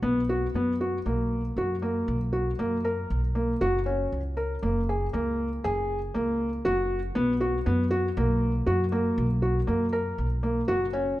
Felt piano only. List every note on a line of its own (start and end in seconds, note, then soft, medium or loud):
0.03 0.19 B3 medium
0.29 0.46 F#4 medium
0.55 0.72 B3 medium
0.81 0.97 F#4 medium
1.06 1.40 A#3 medium
1.58 1.74 F#4 medium
1.82 2.16 A#3 medium
2.33 2.50 F#4 medium
2.59 2.76 A#3 medium
2.85 3.19 A#4 medium
3.35 3.52 A#3 medium
3.61 3.78 F#4 medium
3.86 4.20 C#4 medium
4.37 4.54 A#4 medium
4.63 4.80 A#3 medium
4.89 5.06 G#4 medium
5.13 5.47 A#3 medium
5.64 5.98 G#4 medium
6.14 6.48 A#3 medium
6.65 6.99 F#4 medium
7.15 7.32 B3 medium
7.40 7.57 F#4 medium
7.66 7.83 B3 medium
7.91 8.08 F#4 medium
8.17 8.51 A#3 medium
8.66 8.83 F#4 medium
8.92 9.26 A#3 medium
9.42 9.59 F#4 medium
9.67 9.84 A#3 medium
9.93 10.26 A#4 medium
10.43 10.60 A#3 medium
10.68 10.85 F#4 medium
10.93 11.20 C#4 medium